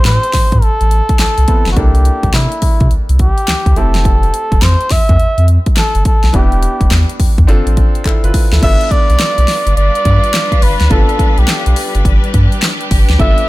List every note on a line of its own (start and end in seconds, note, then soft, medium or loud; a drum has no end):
0.00 1.44 A3 medium
0.00 1.44 C4 medium
0.00 1.45 E4 medium
0.00 1.45 G4 medium
0.05 0.18 A2 loud
0.05 0.65 C5 loud
0.05 snare loud
0.05 clap medium
0.05 closed hi-hat medium
0.23 closed hi-hat soft
0.33 0.41 A2 soft
0.33 kick medium
0.33 snare medium
0.33 open hi-hat medium
0.52 0.60 A2 loud
0.52 kick medium
0.52 closed hi-hat medium
0.62 0.70 A1 soft
0.62 1.19 A4 loud
0.62 closed hi-hat medium
0.81 1.01 A1 medium
0.81 closed hi-hat soft
0.91 closed hi-hat medium
1.09 kick medium
1.09 closed hi-hat medium
1.19 1.27 C2 soft
1.19 1.68 A4 loud
1.19 snare loud
1.19 clap medium
1.19 closed hi-hat medium
1.38 1.45 C2 medium
1.38 closed hi-hat medium
1.48 1.77 B3 soft
1.48 1.77 C4 soft
1.48 1.76 E4 soft
1.48 1.77 A4 medium
1.48 kick medium
1.48 closed hi-hat medium
1.66 1.74 G1 medium
1.66 snare medium
1.66 closed hi-hat medium
1.72 3.72 A#3 medium
1.72 1.79 F#4 medium
1.77 2.10 C2 loud
1.77 3.73 D4 medium
1.77 3.73 E4 medium
1.77 2.36 G4 medium
1.77 3.74 A4 medium
1.77 kick loud
1.77 closed hi-hat medium
1.95 closed hi-hat medium
2.05 closed hi-hat medium
2.23 2.31 C2 medium
2.23 kick medium
2.23 closed hi-hat medium
2.34 2.47 C3 medium
2.34 2.93 E4 medium
2.34 snare loud
2.34 clap medium
2.34 closed hi-hat medium
2.52 closed hi-hat soft
2.62 2.70 C3 soft
2.62 kick medium
2.62 open hi-hat medium
2.80 2.88 C3 loud
2.80 kick loud
2.80 closed hi-hat medium
2.91 2.98 C2 medium
2.91 closed hi-hat medium
3.09 3.30 C2 medium
3.09 closed hi-hat medium
3.19 3.79 G4 medium
3.19 kick medium
3.19 closed hi-hat medium
3.38 closed hi-hat medium
3.48 3.56 D2 soft
3.48 snare loud
3.48 clap medium
3.48 closed hi-hat medium
3.66 3.74 D2 medium
3.66 kick medium
3.66 closed hi-hat medium
3.76 4.31 F1 loud
3.76 6.01 A3 medium
3.76 6.01 C4 medium
3.76 6.02 E4 medium
3.76 6.02 G4 medium
3.76 4.64 A4 medium
3.76 closed hi-hat medium
3.95 snare medium
3.95 closed hi-hat medium
4.05 kick loud
4.05 closed hi-hat medium
4.23 closed hi-hat medium
4.34 closed hi-hat medium
4.52 4.59 F1 medium
4.52 kick medium
4.52 closed hi-hat medium
4.62 4.76 F2 loud
4.62 4.93 C5 loud
4.62 snare loud
4.62 clap medium
4.62 closed hi-hat medium
4.81 closed hi-hat soft
4.91 4.98 F2 medium
4.91 5.48 E5 loud
4.91 kick medium
4.91 snare medium
4.91 open hi-hat medium
5.09 5.17 F2 loud
5.09 kick medium
5.09 closed hi-hat medium
5.20 5.27 F2 soft
5.20 closed hi-hat medium
5.38 5.58 F2 medium
5.38 closed hi-hat soft
5.48 closed hi-hat medium
5.66 kick medium
5.66 closed hi-hat soft
5.77 5.84 G1 soft
5.77 6.04 A4 loud
5.77 snare loud
5.77 clap medium
5.77 closed hi-hat medium
5.95 6.02 G1 loud
5.95 closed hi-hat soft
6.05 6.37 A4 medium
6.05 kick loud
6.05 closed hi-hat medium
6.23 6.31 B1 medium
6.23 snare medium
6.23 closed hi-hat medium
6.33 6.67 E1 loud
6.33 7.45 B3 medium
6.33 7.46 D4 medium
6.33 7.46 E4 medium
6.33 6.92 G4 medium
6.33 7.47 G4 medium
6.33 kick loud
6.33 closed hi-hat medium
6.52 closed hi-hat medium
6.63 closed hi-hat medium
6.81 6.88 E1 medium
6.81 kick medium
6.81 closed hi-hat medium
6.91 7.04 E2 medium
6.91 snare loud
6.91 clap medium
6.91 closed hi-hat medium
7.09 closed hi-hat soft
7.20 7.27 E2 medium
7.20 kick medium
7.20 open hi-hat medium
7.38 7.45 E2 loud
7.38 kick loud
7.38 closed hi-hat medium
7.47 7.61 G1 loud
7.47 8.60 C4 medium
7.47 8.60 D4 medium
7.47 8.05 F4 medium
7.47 8.04 A4 medium
7.47 closed hi-hat medium
7.66 7.87 A1 medium
7.66 closed hi-hat soft
7.77 kick medium
7.77 closed hi-hat medium
7.95 closed hi-hat medium
8.05 8.13 G1 soft
8.05 8.23 E4 medium
8.05 8.23 A4 medium
8.05 kick medium
8.05 clap medium
8.05 closed hi-hat medium
8.24 8.31 G1 medium
8.24 8.51 F4 medium
8.24 8.51 B4 medium
8.24 closed hi-hat medium
8.34 kick medium
8.34 open hi-hat medium
8.52 8.60 D2 medium
8.52 8.80 E4 medium
8.52 8.63 A4 medium
8.52 snare medium
8.52 closed hi-hat medium
8.62 8.76 G1 loud
8.62 13.49 G3 medium
8.62 10.87 B3 medium
8.62 10.87 D4 medium
8.62 13.49 D4 medium
8.62 12.02 F4 medium
8.62 10.87 F4 medium
8.62 10.88 A4 medium
8.62 13.49 B4 medium
8.62 8.93 E5 loud
8.62 kick loud
8.62 closed hi-hat medium
8.62 crash medium
8.81 closed hi-hat medium
8.91 9.76 D5 loud
8.91 kick medium
8.91 closed hi-hat medium
9.10 9.17 B1 medium
9.10 closed hi-hat medium
9.20 snare loud
9.20 clap medium
9.20 closed hi-hat medium
9.38 9.45 B1 loud
9.38 closed hi-hat soft
9.48 snare medium
9.48 open hi-hat medium
9.67 9.74 G1 loud
9.67 closed hi-hat medium
9.77 9.90 G1 loud
9.77 10.64 D5 loud
9.77 closed hi-hat medium
9.95 closed hi-hat soft
10.05 10.19 G2 loud
10.05 kick medium
10.05 closed hi-hat medium
10.24 closed hi-hat medium
10.34 snare loud
10.34 clap medium
10.34 closed hi-hat medium
10.52 kick medium
10.52 closed hi-hat medium
10.62 10.76 G1 medium
10.62 10.93 B4 loud
10.62 open hi-hat medium
10.80 10.88 D2 medium
10.80 snare medium
10.80 closed hi-hat medium
10.90 11.04 G1 loud
10.90 13.15 B3 medium
10.90 13.16 D4 medium
10.90 13.16 F4 medium
10.90 11.40 A4 loud
10.90 13.16 A4 medium
10.90 kick loud
10.90 closed hi-hat medium
11.09 closed hi-hat medium
11.19 kick medium
11.19 closed hi-hat medium
11.38 11.45 B1 loud
11.38 12.24 G4 medium
11.38 closed hi-hat medium
11.48 snare loud
11.48 clap medium
11.48 closed hi-hat medium
11.66 11.74 B1 loud
11.66 closed hi-hat medium
11.76 open hi-hat medium
11.95 12.02 G1 loud
11.95 closed hi-hat medium
12.05 12.18 G1 loud
12.05 13.49 G4 medium
12.05 kick medium
12.05 closed hi-hat medium
12.24 closed hi-hat medium
12.34 12.47 G2 loud
12.34 kick medium
12.34 closed hi-hat medium
12.52 closed hi-hat medium
12.62 snare loud
12.62 clap medium
12.62 closed hi-hat medium
12.64 clap medium
12.81 closed hi-hat soft
12.91 13.04 G1 loud
12.91 kick medium
12.91 open hi-hat medium
13.09 13.17 D2 medium
13.09 snare medium
13.09 closed hi-hat medium
13.19 13.33 G1 loud
13.19 13.49 B3 medium
13.19 13.49 D4 medium
13.19 13.49 F4 medium
13.19 13.49 A4 medium
13.19 13.49 E5 loud
13.19 kick loud
13.19 closed hi-hat medium
13.38 closed hi-hat medium